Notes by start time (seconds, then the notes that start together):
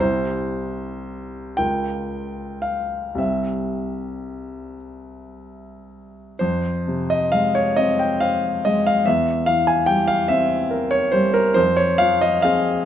0.00 C2 E4 G4 C5
1.57 C#2 F4 A#4 G5
2.62 F5
3.15 C2 G3 C4 C5 E5
6.39 F2 C5
6.87 C3
7.10 D#5
7.32 G#3 F5
7.55 C#5
7.77 C4 D#5
7.99 G5
8.20 C5 F5
8.65 G#3 D#5
8.87 F5
9.06 E2 E5
9.46 E3 F5
9.67 G#5
9.86 G3 G5
10.08 F5
10.28 C4 E5
10.71 A#4
10.91 C#5
11.12 G3 C5
11.34 A#4
11.54 F2 C5
11.77 C#5
11.98 F3 F5
12.21 D#5
12.42 C4 G#4 F5